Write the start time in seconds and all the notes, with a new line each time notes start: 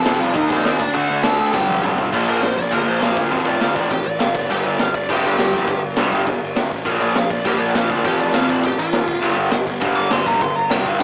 Already playing: A5
0.00 A4
0.05 F1 F2 C3 F3, snare, open hi-hat
0.20 C2 F4 F5
0.34 D#2 D#3 A#3 D#4 D#5, kick, open hi-hat
0.49 A#1 C4 C5, kick
0.65 D#2 D#3 A#3 D#4, snare, open hi-hat
0.79 D2 D4 D5, kick
0.94 D2 D3 A3 D4 F#4 F#5, open hi-hat
1.10 D2
1.23 D2 D3 A3 D4 A4 A5, snare, open hi-hat
1.40 D2
1.53 G1 G2 D3 G3 G4 G5, kick, snare
1.69 G1, high tom
1.83 G1 G2 D3 G3, mid tom
1.98 G1, floor tom
2.12 A#1 A#2 F3 A#3 D5, kick, crash
2.29 A#1 A#4
2.42 A#1 A#2 F3 C5, snare, crash
2.58 A#1 D5, kick
2.71 G1 A#2 F3 A#3 A#4, kick, crash
2.88 A#1 C5
3.01 A#1 A#2 F3 A#3 F5, snare, crash
3.17 D2, kick
3.31 A1 F2 C3 F3, kick, crash
3.46 A1 D5
3.61 D2 F2 C3 F3 F5, snare, crash
3.76 A1 D5, kick
3.90 A1 F2 C3 G4, kick, crash
4.05 A1 D5
4.20 F#1 F2 C3 F5, snare, crash
4.34 G1 D5, kick, crash
4.50 G1 G2 D3 G3 G4, crash
4.65 G1 D5
4.79 G1 G2 D3 F5, snare, crash
4.94 G1 D5, kick
5.09 F1 G2 D3 G3 G4, kick, crash
5.24 G1 G4
5.38 G1 G2 D3 G3, snare, crash
5.53 A#1, kick
5.67 G1 G2 D3, kick, crash
5.83 G1
5.97 C2 G2 D3 G3, snare, crash
6.12 G1, kick
6.26 G1 G2 D3, kick, crash
6.42 G1
6.56 D2 G2 D3, snare, crash
6.71 A1, kick
6.86 A#1 A#2 F3 A#3, kick, crash
7.01 A#1 D5
7.15 A#1 A#2 F3 F5, snare, crash
7.30 A#1 D5, kick
7.45 G1 A#2 F3 A#3 G4, kick, crash
7.59 A#1 D5
7.75 A#1 A#2 F3 A#3 F5, snare, crash
7.90 D2 D5, kick
8.04 A1 F2 C3 F3 G4, kick, crash
8.19 A1 D5
8.34 D2 F2 C3 F3 F5, snare, crash
8.49 A1 D5, kick
8.63 A1 F2 C3 G4, kick, crash
8.78 A1 F4
8.93 D#2 F2 C3, snare, crash
9.08 G1, kick
9.21 G1 G2 D3 G3, crash
9.38 G1
9.51 G1 G2 D3, snare, crash
9.67 G1, kick
9.81 F1 G2 D3 G3, kick, crash
9.96 G1 D6
10.10 G1 G2 D3 G3 C6, snare, crash
10.26 A#1 A#5, kick
10.40 G1 G2 D3 C6, kick, crash
10.56 G1 A#5
10.70 C2 G2 D3 G3 G5, snare, crash
10.86 G1 F5, kick
11.00 G2 G5